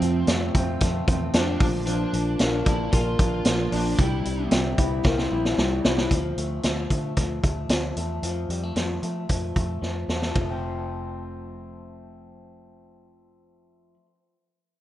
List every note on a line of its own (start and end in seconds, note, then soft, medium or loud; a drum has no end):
0.00 0.54 F2 medium
0.00 0.23 F2 loud
0.00 0.55 C3 medium
0.00 0.54 F3 medium
0.00 1.34 F3 medium
0.00 0.54 A3 medium
0.00 0.55 C4 medium
0.00 0.56 F4 medium
0.00 closed hi-hat medium
0.27 0.49 F2 loud
0.27 0.80 A3 medium
0.27 snare loud
0.27 closed hi-hat medium
0.55 0.76 F2 medium
0.55 1.07 F3 medium
0.55 1.07 A3 medium
0.55 1.07 C4 medium
0.55 1.08 C4 medium
0.55 1.09 F4 medium
0.55 kick medium
0.55 closed hi-hat medium
0.81 1.03 F2 loud
0.81 1.66 A3 medium
0.81 kick loud
0.81 snare soft
0.81 closed hi-hat loud
1.07 1.29 E2 medium
1.07 1.33 F3 medium
1.07 1.33 A3 medium
1.07 1.66 C4 medium
1.07 1.34 C4 medium
1.07 1.35 F4 medium
1.07 kick loud
1.07 closed hi-hat medium
1.33 1.55 F2 loud
1.33 1.59 F3 medium
1.33 1.60 F3 medium
1.33 1.61 A3 medium
1.33 1.61 C4 medium
1.33 1.58 D4 medium
1.33 1.61 F4 medium
1.33 snare loud
1.33 closed hi-hat medium
1.60 2.04 A#1 loud
1.60 1.86 F3 medium
1.60 1.87 A#3 medium
1.60 1.87 D4 medium
1.60 1.88 F4 medium
1.60 kick loud
1.60 open hi-hat medium
1.87 2.66 A#2 medium
1.87 2.65 F3 medium
1.87 2.12 F3 medium
1.87 2.66 A#3 medium
1.87 2.66 D4 medium
1.87 2.67 F4 loud
1.87 closed hi-hat medium
2.13 2.35 A#1 loud
2.13 3.44 F3 medium
2.13 closed hi-hat medium
2.39 2.62 A#1 medium
2.39 2.91 A#3 medium
2.39 snare loud
2.39 closed hi-hat medium
2.65 2.88 A#1 medium
2.65 3.17 F3 medium
2.65 3.18 A#3 medium
2.65 3.18 D4 medium
2.65 3.19 D4 medium
2.65 2.91 E4 loud
2.65 3.20 F4 medium
2.65 kick loud
2.65 closed hi-hat medium
2.92 3.15 A#1 loud
2.92 4.04 A#3 medium
2.92 3.74 F4 loud
2.92 kick loud
2.92 closed hi-hat loud
3.18 3.41 A#1 medium
3.18 3.43 F3 medium
3.18 3.44 A#3 medium
3.18 3.71 D4 medium
3.18 3.45 D4 medium
3.18 3.45 F4 medium
3.18 kick loud
3.18 closed hi-hat medium
3.44 3.67 A#1 loud
3.44 3.70 F3 medium
3.44 3.98 F3 medium
3.44 3.71 A#3 medium
3.44 3.71 D4 medium
3.44 3.73 F4 medium
3.44 snare loud
3.44 closed hi-hat loud
3.71 3.94 A#1 loud
3.71 3.98 F3 medium
3.71 3.99 A#3 medium
3.71 4.04 D4 medium
3.71 3.99 D4 medium
3.71 3.99 F4 medium
3.71 open hi-hat medium
3.98 4.20 C2 loud
3.98 4.78 C3 medium
3.98 4.24 G3 medium
3.98 4.76 G3 medium
3.98 4.77 C4 medium
3.98 4.78 E4 medium
3.98 4.78 G4 loud
3.98 kick loud
3.98 closed hi-hat medium
4.25 4.47 C2 loud
4.25 5.57 G3 medium
4.25 closed hi-hat medium
4.51 4.73 C2 loud
4.51 5.04 C4 medium
4.51 snare loud
4.51 closed hi-hat medium
4.77 5.00 C2 loud
4.77 5.30 G3 medium
4.77 5.30 C4 medium
4.77 5.30 E4 medium
4.77 5.31 E4 medium
4.77 5.32 G4 medium
4.77 kick medium
4.77 closed hi-hat medium
5.05 5.26 C2 medium
5.05 5.18 A#3 medium
5.05 kick loud
5.05 snare medium
5.18 6.16 C4 medium
5.18 snare medium
5.31 5.53 A#1 medium
5.31 5.56 G3 medium
5.31 5.57 C4 medium
5.31 5.84 E4 medium
5.31 5.58 E4 medium
5.31 5.58 G4 medium
5.45 snare medium
5.57 5.79 C2 loud
5.57 5.83 G3 medium
5.57 6.11 G3 medium
5.57 5.84 C4 medium
5.57 5.85 E4 medium
5.57 5.85 G4 medium
5.57 snare medium
5.84 6.06 C2 loud
5.84 6.11 G3 medium
5.84 6.11 C4 medium
5.84 6.16 E4 medium
5.84 6.12 E4 medium
5.84 6.12 G4 medium
5.84 snare loud
5.98 snare medium
6.11 6.33 D2 loud
6.11 6.64 F3 medium
6.11 kick medium
6.11 closed hi-hat medium
6.37 6.58 D2 loud
6.37 6.91 A3 medium
6.37 closed hi-hat medium
6.63 6.85 D2 medium
6.63 7.17 F3 medium
6.63 snare medium
6.63 closed hi-hat medium
6.90 7.12 D3 medium
6.90 7.43 A3 medium
6.90 kick medium
6.90 closed hi-hat medium
7.17 7.39 D2 medium
7.17 7.70 F3 medium
7.17 kick medium
7.17 snare soft
7.17 closed hi-hat medium
7.44 7.65 D2 medium
7.44 7.97 A3 soft
7.44 kick medium
7.44 closed hi-hat medium
7.69 7.91 D2 loud
7.69 8.23 F3 medium
7.69 snare loud
7.69 closed hi-hat medium
7.96 8.18 E2 medium
7.96 8.50 A3 medium
7.96 closed hi-hat medium
8.22 8.44 F2 loud
8.22 8.76 F3 medium
8.22 closed hi-hat medium
8.49 8.71 F2 loud
8.49 8.63 G3 medium
8.49 closed hi-hat medium
8.63 9.02 A3 soft
8.76 8.98 F2 medium
8.76 9.29 F3 medium
8.76 snare medium
8.76 closed hi-hat medium
9.03 9.24 F3 medium
9.03 9.56 A3 soft
9.03 closed hi-hat medium
9.29 9.51 F2 medium
9.29 9.82 F3 medium
9.29 kick medium
9.29 closed hi-hat medium
9.56 9.78 F2 medium
9.56 10.09 A3 soft
9.56 kick medium
9.56 closed hi-hat medium
9.82 10.04 F2 medium
9.82 10.29 F3 medium
9.82 snare soft
10.08 10.30 E2 medium
10.08 10.41 A3 medium
10.08 snare medium
10.22 snare medium
10.29 13.94 F3 medium
10.35 13.96 F1 medium
10.35 kick medium
10.35 ride medium
10.41 14.06 A3 medium
10.50 14.15 C4 medium